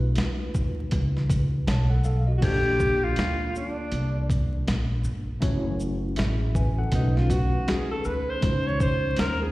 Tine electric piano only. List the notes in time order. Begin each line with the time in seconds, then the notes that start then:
Already playing: A3 D#4 F4 F#4 B4
1.67 C#5 A5
1.90 A4 F#5
2.05 A4 F5
2.27 F#4 D#5
2.41 A#3 D4 F4 A4 C5
2.50 D5
5.40 A3 C#4 E4 F#4 C#5
6.17 G#4 E5
6.55 B4 G#5
6.78 A4 F#5
6.92 A3 C#4 D#4 F#4 B4
8.41 G#3 C#4 D#4 F4 C5